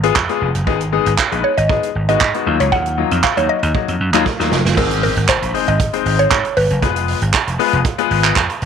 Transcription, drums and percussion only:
0.03 closed hi-hat medium
0.16 kick loud
0.16 clap loud
0.29 closed hi-hat soft
0.55 closed hi-hat medium
0.67 kick loud
0.81 closed hi-hat medium
1.06 closed hi-hat medium
1.18 kick loud
1.18 clap loud
1.32 closed hi-hat medium
1.58 closed hi-hat medium
1.69 kick loud
1.83 closed hi-hat medium
2.09 closed hi-hat medium
2.21 kick loud
2.21 clap loud
2.34 closed hi-hat soft
2.60 closed hi-hat medium
2.72 kick loud
2.86 closed hi-hat medium
3.11 closed hi-hat medium
3.24 kick loud
3.24 clap loud
3.37 closed hi-hat medium
3.63 closed hi-hat medium
3.75 kick loud
3.88 closed hi-hat medium
4.14 clap medium
4.14 closed hi-hat medium
4.26 kick loud
4.26 snare medium
4.40 snare medium
4.52 snare loud
4.65 snare medium
4.77 kick loud
4.77 crash loud
4.91 closed hi-hat medium
5.03 open hi-hat medium
5.16 closed hi-hat medium
5.29 kick loud
5.29 clap loud
5.29 closed hi-hat medium
5.42 closed hi-hat medium
5.54 open hi-hat medium
5.68 closed hi-hat soft
5.80 kick loud
5.80 closed hi-hat medium
5.93 closed hi-hat medium
6.06 open hi-hat medium
6.19 closed hi-hat soft
6.31 kick loud
6.31 clap loud
6.31 closed hi-hat medium
6.45 closed hi-hat medium
6.57 open hi-hat medium
6.70 closed hi-hat medium
6.82 kick loud
6.82 closed hi-hat medium
6.96 closed hi-hat medium
7.08 open hi-hat medium
7.22 closed hi-hat medium
7.34 kick loud
7.34 clap loud
7.34 closed hi-hat medium
7.48 closed hi-hat medium
7.59 open hi-hat medium
7.73 closed hi-hat soft
7.85 kick loud
7.85 closed hi-hat medium
7.98 closed hi-hat medium
8.11 open hi-hat medium
8.24 clap medium
8.24 closed hi-hat medium
8.36 kick loud
8.36 clap loud
8.36 closed hi-hat medium
8.50 closed hi-hat medium
8.62 open hi-hat medium

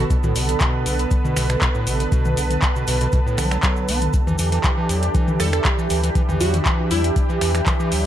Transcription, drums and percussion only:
0.10 kick loud
0.10 closed hi-hat medium
0.10 cabasa medium
0.23 mid tom medium
0.23 cabasa soft
0.36 open hi-hat loud
0.36 cabasa medium
0.49 closed hi-hat medium
0.49 cabasa soft
0.60 kick loud
0.60 clap loud
0.60 closed hi-hat medium
0.60 cabasa soft
0.86 open hi-hat loud
0.86 cabasa loud
0.99 closed hi-hat medium
0.99 cabasa soft
1.11 kick loud
1.11 closed hi-hat soft
1.11 cabasa medium
1.25 mid tom medium
1.25 cabasa soft
1.37 finger snap medium
1.37 open hi-hat loud
1.37 mid tom medium
1.37 cabasa loud
1.49 finger snap medium
1.49 closed hi-hat medium
1.49 cabasa soft
1.61 kick loud
1.61 clap loud
1.61 closed hi-hat medium
1.61 cabasa medium
1.75 cabasa soft
1.87 open hi-hat loud
1.87 cabasa loud
2.00 closed hi-hat medium
2.00 cabasa soft
2.12 kick loud
2.12 closed hi-hat soft
2.12 cabasa medium
2.25 mid tom loud
2.25 cabasa soft
2.37 open hi-hat loud
2.37 cabasa loud
2.51 closed hi-hat medium
2.51 mid tom medium
2.51 cabasa soft
2.62 kick loud
2.62 clap loud
2.62 closed hi-hat soft
2.62 cabasa medium
2.76 cabasa soft
2.88 open hi-hat loud
2.88 cabasa medium
3.01 closed hi-hat medium
3.01 cabasa soft
3.12 kick loud
3.12 closed hi-hat medium
3.12 cabasa medium
3.27 cabasa soft
3.38 finger snap medium
3.38 open hi-hat loud
3.38 mid tom medium
3.38 cabasa loud
3.51 finger snap medium
3.51 closed hi-hat medium
3.51 cabasa soft
3.63 kick loud
3.63 clap loud
3.63 closed hi-hat medium
3.63 cabasa medium
3.76 cabasa soft
3.88 open hi-hat loud
3.88 cabasa medium
4.01 closed hi-hat medium
4.01 mid tom medium
4.01 cabasa soft
4.13 kick loud
4.13 closed hi-hat medium
4.13 cabasa medium
4.27 mid tom loud
4.27 cabasa soft
4.38 open hi-hat loud
4.38 cabasa loud
4.52 closed hi-hat medium
4.52 cabasa soft
4.64 kick loud
4.64 clap loud
4.64 closed hi-hat medium
4.64 cabasa soft
4.89 open hi-hat loud
4.89 cabasa medium
5.02 closed hi-hat medium
5.02 cabasa soft
5.15 kick loud
5.15 closed hi-hat medium
5.15 cabasa medium
5.28 mid tom medium
5.28 cabasa soft
5.40 finger snap medium
5.40 open hi-hat loud
5.40 mid tom medium
5.40 cabasa medium
5.53 finger snap medium
5.53 closed hi-hat medium
5.53 cabasa soft
5.65 kick loud
5.65 clap loud
5.65 closed hi-hat medium
5.65 cabasa soft
5.79 cabasa soft
5.90 open hi-hat loud
5.90 cabasa medium
6.04 closed hi-hat medium
6.04 cabasa soft
6.15 kick loud
6.15 closed hi-hat medium
6.15 cabasa soft
6.29 mid tom loud
6.29 cabasa soft
6.41 open hi-hat loud
6.41 cabasa medium
6.54 closed hi-hat medium
6.54 mid tom medium
6.54 cabasa soft
6.65 kick loud
6.65 clap loud
6.65 closed hi-hat medium
6.65 cabasa soft
6.91 open hi-hat loud
6.91 cabasa medium
7.04 closed hi-hat medium
7.04 cabasa soft
7.16 kick loud
7.16 closed hi-hat medium
7.16 cabasa soft
7.30 cabasa soft
7.41 finger snap medium
7.41 open hi-hat loud
7.41 cabasa medium
7.55 finger snap medium
7.55 closed hi-hat medium
7.55 cabasa soft
7.66 kick loud
7.66 clap loud
7.66 closed hi-hat medium
7.66 cabasa medium
7.80 cabasa soft
7.92 open hi-hat loud
7.92 cabasa medium

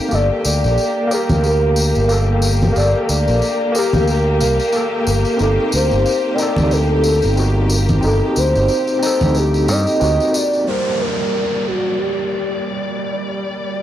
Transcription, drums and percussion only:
0.11 tambourine medium
0.45 tambourine medium
0.64 tambourine soft
0.78 tambourine soft
1.11 tambourine medium
1.29 tambourine soft
1.29 low conga medium
1.44 tambourine medium
1.76 tambourine medium
1.95 tambourine soft
2.09 tambourine medium
2.42 tambourine loud
2.62 tambourine soft
2.62 low conga medium
2.76 tambourine medium
3.09 tambourine medium
3.28 tambourine soft
3.42 tambourine soft
3.75 tambourine medium
3.93 tambourine soft
3.93 low conga medium
4.07 tambourine soft
4.41 tambourine medium
4.60 tambourine soft
4.72 tambourine soft
5.07 tambourine medium
5.25 tambourine soft
5.39 tambourine soft
5.72 tambourine medium
5.91 tambourine soft
6.06 tambourine medium
6.38 tambourine medium
6.56 tambourine soft
6.56 low conga medium
6.71 tambourine soft
7.04 tambourine medium
7.22 tambourine soft
7.37 tambourine soft
7.70 tambourine medium
7.89 tambourine soft
7.89 low conga medium
8.02 tambourine soft
8.36 tambourine medium
8.55 tambourine soft
8.68 tambourine medium
8.87 tambourine soft
9.03 tambourine medium
9.21 tambourine soft
9.21 low conga medium
9.35 tambourine medium
9.54 tambourine soft
9.68 tambourine medium
9.87 tambourine soft
10.01 tambourine soft
10.20 tambourine soft
10.34 tambourine medium
10.53 tambourine soft

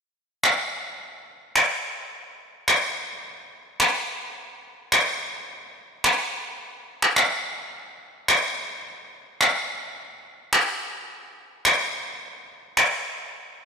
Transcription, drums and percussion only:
0.43 finger snap loud
1.56 finger snap loud
2.68 finger snap loud
3.80 finger snap loud
4.92 finger snap loud
6.04 finger snap loud
7.02 finger snap medium
7.16 finger snap loud
8.28 finger snap loud
9.41 finger snap loud
10.53 finger snap loud
11.65 finger snap loud
12.77 finger snap loud

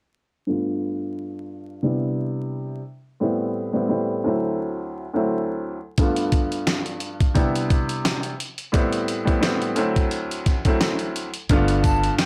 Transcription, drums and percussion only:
5.98 kick loud
5.98 closed hi-hat loud
6.16 closed hi-hat medium
6.32 kick medium
6.32 closed hi-hat medium
6.52 closed hi-hat soft
6.67 snare loud
6.67 snare medium
6.67 closed hi-hat medium
6.86 closed hi-hat soft
7.00 closed hi-hat medium
7.20 kick medium
7.20 closed hi-hat medium
7.35 kick medium
7.35 closed hi-hat medium
7.56 closed hi-hat medium
7.70 kick medium
7.70 closed hi-hat medium
7.89 closed hi-hat medium
8.05 snare loud
8.05 closed hi-hat medium
8.23 closed hi-hat medium
8.40 closed hi-hat medium
8.58 closed hi-hat medium
8.74 kick loud
8.74 closed hi-hat loud
8.93 closed hi-hat medium
9.08 closed hi-hat medium
9.27 kick medium
9.27 closed hi-hat soft
9.43 snare loud
9.43 closed hi-hat medium
9.62 closed hi-hat soft
9.76 closed hi-hat medium
9.96 kick loud
9.96 closed hi-hat medium
10.11 closed hi-hat medium
10.31 closed hi-hat medium
10.46 kick medium
10.46 snare soft
10.46 closed hi-hat medium
10.65 kick loud
10.65 closed hi-hat medium
10.81 snare loud
10.81 closed hi-hat medium
10.99 closed hi-hat soft
11.16 closed hi-hat medium
11.34 closed hi-hat medium
11.49 kick loud
11.49 closed hi-hat loud
11.68 closed hi-hat medium
11.84 kick medium
11.84 closed hi-hat medium
11.84 tambourine medium
12.03 closed hi-hat soft
12.18 snare loud
12.18 closed hi-hat medium

